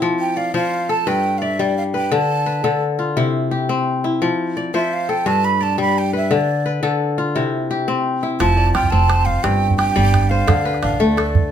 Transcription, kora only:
Already playing: C4 E4 G4
0.02 F3
0.37 D5
0.54 F3 C5
0.89 A4
1.07 G2 B4
1.42 D5
1.59 G3
1.94 B4
2.12 D3
2.46 B4
2.64 D3 A4
2.99 F4
3.17 C3 E4
3.51 G4
3.69 C4
4.04 E4
4.22 F3
4.57 D5
4.74 F3 C5
5.09 A4
5.26 G2 B4
5.61 D5
5.78 G3
6.13 B4
6.31 D3
6.66 B4
6.83 D3 A4
7.18 F4
7.36 C3 E4
7.71 G4
7.88 C4
8.23 E4
8.40 F3
8.57 D5
8.75 F4
8.92 C4
9.09 C5
9.44 G2
9.78 G4
9.96 G3 D5
10.31 C5
10.47 D3
10.65 B4
10.83 D4
11.00 A3
11.17 A4

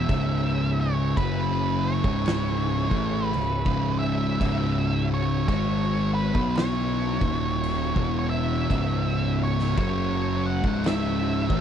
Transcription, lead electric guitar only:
Already playing: E5
0.81 C#5
1.17 B4
1.83 C#5
3.27 B4
3.99 E5
5.14 C#5
5.49 C#5
6.14 B4
6.56 C#5
8.19 C#5
8.30 E5
9.44 C#5
9.79 C#5
10.46 F#5
10.87 E5

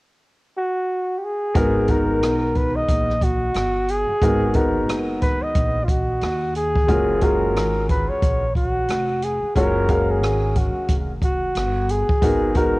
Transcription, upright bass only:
1.55 G#1
2.22 B1
2.89 A#1
3.55 G1
4.09 muted upright bass stroke
4.22 G#1
4.89 F#1
5.42 muted upright bass stroke
5.55 A#1
6.22 D#2
6.89 F#1
7.55 G#1
8.10 muted upright bass stroke
8.22 A#1
8.89 F1
9.43 muted upright bass stroke
9.56 F#1
10.23 G#1
10.75 muted upright bass stroke
10.89 F1
11.55 G1
12.09 muted upright bass stroke
12.22 G#1

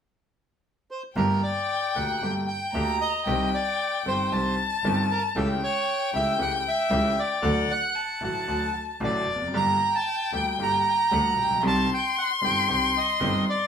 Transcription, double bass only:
1.16 G1
1.96 D2
2.22 G1
2.74 D2
3.27 C2
4.05 G1
4.32 C2
4.84 G1
5.36 C#2
6.14 C#2
6.39 C#2
6.91 C#2
7.44 D2
8.22 A1
8.48 D2
9.01 A1
9.27 F1
9.54 G1
10.33 D2
10.59 G1
11.12 D2
11.38 A#1
11.65 C2
12.43 G1
12.70 C2
13.22 G1

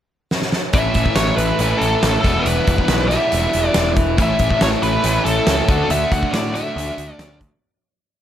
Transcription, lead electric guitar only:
0.74 E5
1.15 C#5
1.36 B4
1.78 A4
2.21 A4
2.40 A4 B4
3.08 E5
3.68 D5
4.23 E5
4.63 C#5
4.83 B4
5.25 A4
5.91 E5
6.12 F#5
6.31 D5
6.55 E5
7.14 D5

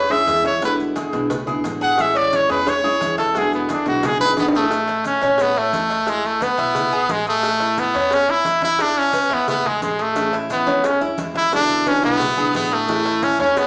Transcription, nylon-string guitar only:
0.10 G#3 C#4 E4
0.27 E3 G#3 C#4 E4
0.62 B2 D3 G#3 B3 E4
0.95 D3 G#3 B3 E4
1.13 D3 G#3 B3 E4
1.30 muted nylon-string guitar stroke
1.47 D3 G#3 B3 E4
1.64 D3 G#3 B3 E4
1.98 E3 G#3 C#4 E4
2.32 E3 G#3 C#4 E4
2.49 G#3 C#4 E4
2.67 muted nylon-string guitar stroke
2.84 G#3 C#4 E4
3.02 E3 G#3 C#4 E4
3.35 B2 D3 G#3 B3 E4
3.70 D3 G#3 B3 E4
3.86 D3 G#3 B3 E4
4.03 muted nylon-string guitar stroke
4.19 D3 G#3 B3 E4
4.36 D3 G#3 B3 E4
10.15 E3 C#4 E4
10.66 G#3 C#4 E4
10.83 muted nylon-string guitar stroke
11.01 G#3 C#4 E4
11.18 E3 G#3 C#4 E4
11.52 B2 D3 G#3 B3 E4
12.02 D3 G#3 B3 E4
12.20 muted nylon-string guitar stroke
12.37 D3 G#3 B3 E4
12.54 D3 G#3 B3 E4
12.88 E3 C#4 E4
13.39 G#3 C#4 E4
13.57 muted nylon-string guitar stroke

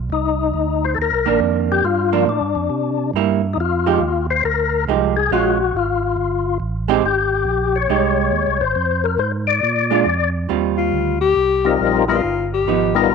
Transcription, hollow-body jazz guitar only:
1.26 D#3 A#3 D4
2.13 F3 A#3 D4
3.16 G3 A#3 E4
3.86 F3 G#3 D#4 G4
4.88 F3 G#3 D#4 G4
5.32 G#3 C#4 F4
6.88 G#3 C4 D#4 G4
7.90 G#3 D#4 G4
9.91 G#3 D4 F4
10.49 D#3 G3 C4 F4
12.68 F3 B3 D#4

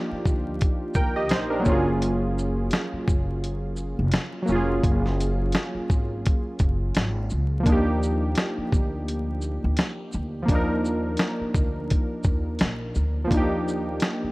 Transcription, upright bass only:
0.11 muted upright bass stroke
0.26 D2
0.96 D#2
1.31 A#1
1.66 F#1
2.93 muted upright bass stroke
3.08 F#1
3.99 F1
4.49 F1
4.84 F#1
5.75 muted upright bass stroke
5.91 G#1
6.60 F#1
6.96 G#1
7.32 C#2
7.67 D#2
8.58 muted upright bass stroke
8.73 D2
9.64 D2
10.14 D2
10.49 D#2
11.40 muted upright bass stroke
11.55 D2
12.25 D#2
12.61 A#1
12.96 D2
13.31 D#2
14.23 muted upright bass stroke

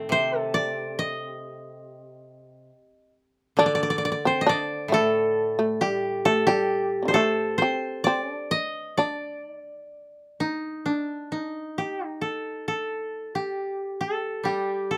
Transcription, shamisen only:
3.59 D4
4.25 C4
4.47 D4
4.92 A3
5.59 A3
5.82 G3
6.26 A3
6.48 G3
7.03 C3 D3
7.10 D#3 G3
7.15 A3
7.62 C4
8.07 C4
8.33 D4
8.99 D4

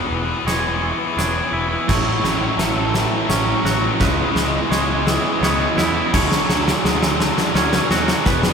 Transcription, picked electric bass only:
0.10 E1
0.45 E1
1.17 E1
1.52 E1
1.89 A1
2.23 A1
2.58 A1
3.29 A1
3.64 A1
4.00 C#2
4.36 C#2
4.71 C#2
5.42 C#2
5.77 E2
6.14 D2
6.49 D2
6.84 D2
7.54 D2
7.90 D#2
8.26 E1

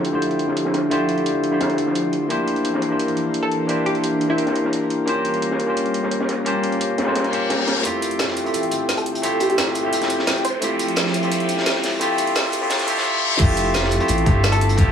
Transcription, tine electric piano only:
Already playing: D3 A3 E4 F4 G4 C5
0.12 D3 A3 E4 F4 G4 C5
0.89 D3 A3 E4 F4 G4 C5
1.50 D3 A3 E4 F4 G4 C5
2.28 A#3 D4 E4 G4 C5
2.89 A#3 D4 E4 G4 C5
3.67 A#3 D4 E4 G4 C5
4.28 A#3 D4 E4 G4 C5
5.06 A#3 C#4 F4 G4 C5
5.66 A#3 C#4 F4 G4 C5
6.44 A#3 C#4 F4 G4 C5
7.06 A#3 C#4 F4 G4 C5
7.31 A#3 C#4 F4 G4 C5
7.83 A3 C4 E4 F4 G4
8.44 A3 C4 E4 F4 G4
9.22 A3 C4 E4 F4 G4
9.83 A3 C4 E4 F4 G4
10.60 A3 C4 E4 F4 G4
11.21 A3 C4 E4 F4 G4
11.99 A3 C4 E4 F4 G4
12.61 A3 C4 E4 F4 G4
12.86 A3 C4 E4 F4 G4
13.38 A3 C4 E4 F4 G4
14.00 A3 C4 E4 F4 G4
14.25 A3 C4 E4 F4 G4
14.77 A3 C4 E4 F4 G4

